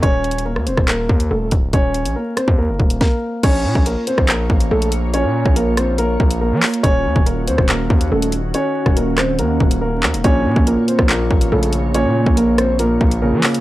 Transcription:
<<
  \new Staff \with { instrumentName = "Ambient pad" } { \time 4/4 \key bes \minor \tempo 4 = 141 r1 | r1 | <bes f' des''>1~ | <bes f' des''>1 |
<ees des' ges'>1~ | <ees des' ges'>1 | <bes f' des''>1~ | <bes f' des''>1 | }
  \new Staff \with { instrumentName = "Grand piano" } { \time 4/4 \key bes \minor <des' des''>4 <bes bes'>8 <c' c''>8 <bes bes'>4 <a a'>8 r8 | <des' des''>4 <bes bes'>8 <c' c''>8 <bes bes'>4 <bes bes'>4 | <des' des''>4 <bes bes'>8 <c' c''>8 <bes bes'>4 <a a'>8 r8 | <des' des''>4 <bes bes'>8 <c' c''>8 <bes bes'>4 <bes bes'>4 |
<des' des''>4 <bes bes'>8 <c' c''>8 <bes bes'>4 <a a'>8 r8 | <des' des''>4 <bes bes'>8 <c' c''>8 <bes bes'>4 <bes bes'>4 | <des' des''>4 <bes bes'>8 <c' c''>8 <bes bes'>4 <a a'>8 r8 | <des' des''>4 <bes bes'>8 <c' c''>8 <bes bes'>4 <bes bes'>4 | }
  \new Staff \with { instrumentName = "Felt piano" } { \clef bass \time 4/4 \key bes \minor r1 | r1 | r1 | r1 |
r1 | r1 | bes,8 bes,8 bes,4 bes,4 des4 | bes,8 bes,8 bes,4 bes,4 des4 | }
  \new Staff \with { instrumentName = "808-style bass" } { \clef bass \time 4/4 \key bes \minor ees,,4~ ees,,16 ees,16 ees,,16 ees,,8. ees,8 ees,,8 des,,8 | ees,,8. bes,,16 r8. ees,8 ges,,16 ees,,8 r4 | bes,,8 bes,16 bes,,8 r8 bes,,8. a,,8 bes,,4~ | bes,,16 bes,8 bes,,4.~ bes,,16 bes,,8. f16 r8 |
ees,,8 ees,16 ees,,8. ees,16 ees,,8. ees,8 ees,,4 | r8. ees,,4~ ees,,16 ees,8 ees,,4 ees,16 ees,,16 | bes,,8 bes,16 bes,,8 r8 bes,,8. a,,8 bes,,4~ | bes,,16 bes,8 bes,,4.~ bes,,16 bes,,8. f16 r8 | }
  \new DrumStaff \with { instrumentName = "Drums" } \drummode { \time 4/4 \tuplet 3/2 { <hh bd>16 r16 r16 hh16 hh16 hh16 } r16 ss16 hh16 <bd ss>16 <hc hh>8 bd16 hh16 r8 <hh bd>8 | <hh bd>8 hh16 hh16 r8 <hh ss>16 bd16 r8 bd16 hh16 <bd sn>4 | <cymc hh bd>8. bd16 hh8 hh16 <bd ss>16 <hc hh>8 bd16 hh16 r16 hh16 hh8 | hh8. bd16 hh8 <hh ss>8 hh8 bd16 hh16 r8 <hc hho>16 hh16 |
<hh bd>8. bd16 hh8 hh16 <bd ss>16 <hc hh>8 bd16 hh16 r16 hh16 hh8 | hh8. <bd ss>16 hh8 <hc hh ss>8 hh8 bd16 hh16 r8 hc16 hh16 | <hh bd>8. bd16 hh8 hh16 <bd ss>16 <hc hh>8 bd16 hh16 r16 hh16 hh8 | hh8. bd16 hh8 <hh ss>8 hh8 bd16 hh16 r8 <hc hho>16 hh16 | }
>>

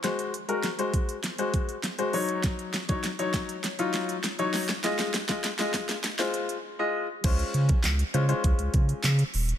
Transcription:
<<
  \new Staff \with { instrumentName = "Grand piano" } { \time 4/4 \key des \major \tempo 4 = 100 <aes ges' c''>8 r16 <aes ges' bes'>16 r16 <aes ges' c''>8 r8 <aes ges' c''>8 r8 <aes ges' c''>16 <ges ees' des''>8~ | <ges ees' des''>8 r16 <ges ees' des''>16 r16 <ges ees' des''>8 r8 <ges ees' f'>8 r8 <ges ees' des''>8 r16 | <aes f' ees''>8 r16 <aes f' ees''>16 r16 <aes f' ees''>8 r8 <aes f' c''>8 r8 <aes f' ees''>8 r16 | <aes des' f' c''>4 r8 <aes des' f' c''>16 <aes des' f' c''>4~ <aes des' f' c''>16 r4 | }
  \new Staff \with { instrumentName = "Sub bass" } { \clef bass \time 4/4 \key des \major r1 | r1 | r1 | des,8 des8 des,8 des8 des,16 des,16 des8 des8 ees,,8 | }
  \new DrumStaff \with { instrumentName = "Drums" } \drummode { \time 4/4 <hh sn>16 hh16 hh16 hh16 <hh sn>16 hh16 <hh bd>16 hh16 <hh sn>16 hh16 <hh bd>16 hh16 <hh sn>16 hh16 hho16 hh16 | <hh bd sn>16 hh16 <hh sn>16 <hh bd>16 <hh sn>16 hh16 <hh bd sn>16 hh16 <hh sn>16 hh16 <hh sn>16 hh16 <hh sn>16 hh16 <hho sn>16 sn16 | <hh sn>16 <hh sn>16 <hh sn>16 <hh bd sn>16 <hh sn>16 <hh sn>16 <hh bd sn>16 <hh sn>16 <hh sn>16 <hh sn>16 hh16 hh16 r4 | <cymc hh bd>16 hh16 hh16 <hh bd>16 <hc hh sn>16 hh16 hh16 hh16 <hh bd>16 hh16 <hh bd>16 hh16 <hc hh sn>16 hh16 hho16 hh16 | }
>>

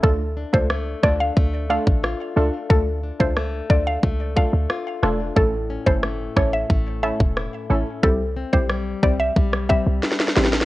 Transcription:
<<
  \new Staff \with { instrumentName = "Synth pluck" } { \time 4/4 \key d \minor \tempo 4 = 90 a'8 r16 c''16 r8 d''16 f''16 r8 f''16 r4 r16 | a'8 r16 c''16 r8 d''16 f''16 r8 f''16 r4 r16 | a'8 r16 c''16 r8 cis''16 e''16 r8 e''16 r4 r16 | a'8 r16 c''16 r8 d''16 e''16 r8 e''16 r4 r16 | }
  \new Staff \with { instrumentName = "Synth stab" } { \time 4/4 \key d \minor <a d' f' a'>16 r8 <a d' f' a'>16 r8 <a d' f' a'>16 r8. <a d' f' a'>16 r8. <a d' f' a'>16 r16 | <a d' f' a'>16 r8 <a d' f' a'>16 r8 <a d' f' a'>16 r8. <a d' f' a'>16 r8. <a d' f' a'>16 r16 | <a cis' e' a'>16 r8 <a cis' e' a'>16 r8 <a cis' e' a'>16 r8. <a cis' e' a'>16 r8. <a cis' e' a'>16 r16 | <g c' e' g'>16 r8 <g c' e' g'>16 r8 <g c' e' g'>16 r8. <g c' e' g'>16 r8. <g c' e' g'>16 r16 | }
  \new Staff \with { instrumentName = "Nylon-string guitar" } { \time 4/4 \key d \minor r8 d'8 a8 d'8 a8 d'8 f'8 d'8~ | d'8 d'8 a8 d'8 a8 d'8 f'8 d'8 | a,8 cis'8 a8 cis'8 a8 cis'8 e'8 cis'8 | r8 c'8 g8 c'8 g8 c'8 e'8 c'8 | }
  \new Staff \with { instrumentName = "808-style bass" } { \clef bass \time 4/4 \key d \minor d,8. cis,8. d,8 d,8. a,,8 r16 cis,16 r16 | d,8. cis,8. d,8 cis,8. d,16 r8 e,,8 | a,,8. g,,8. a,,8 a,,8. e,,8 r16 a,,16 r16 | c,8. b,,8. c,8 b,,8. c,16 r8 a,,8 | }
  \new DrumStaff \with { instrumentName = "Drums" } \drummode { \time 4/4 bd8. bd16 ss8 <bd ss>8 bd8. bd16 ss4 | bd8. bd16 ss8 bd8 bd8 bd8 ss8 ss8 | bd8. bd16 ss8 <bd ss>8 bd8. bd16 ss4 | bd8. bd16 ss8 bd8 bd16 ss16 bd8 sn32 sn32 sn32 sn32 sn32 sn32 sn32 sn32 | }
>>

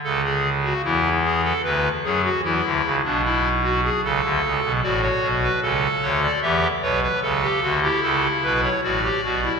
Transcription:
<<
  \new Staff \with { instrumentName = "Pipe organ" } { \time 3/4 \key a \mixolydian \tempo 4 = 75 << { r2. | r2. | d''16 cis''8 b'16 a'8 cis''16 d''16 e''8 cis''16 b'16 | r8. g'16 a'8 b'16 cis''16 d''4 | } \\ { a'16 gis'8 fis'16 e'8 gis'16 a'16 b'8 gis'16 fis'16 | e'8. d'16 e'8 fis'16 gis'16 a'4 | fis'4 r4 g'8 b'8 | a'16 g'16 fis'16 e'4~ e'16 fis'16 g'16 fis'16 e'16 | } >> }
  \new Staff \with { instrumentName = "Pipe organ" } { \clef bass \time 3/4 \key a \mixolydian <cis, cis>4 <e, e>4 <d, d>8 <fis, fis>8 | <e, e>16 <d, d>16 <cis, cis>16 <b,, b,>4~ <b,, b,>16 <cis, cis>16 <d, d>16 <cis, cis>16 <b,, b,>16 | <a,, a,>8 <b,, b,>8 <cis, cis>8 <d, d>8 <e, e>8 <b,, b,>8 | <cis, cis>8 <d, d>8 <cis, cis>8 <b,, b,>8 <a,, a,>8 <b,, b,>8 | }
>>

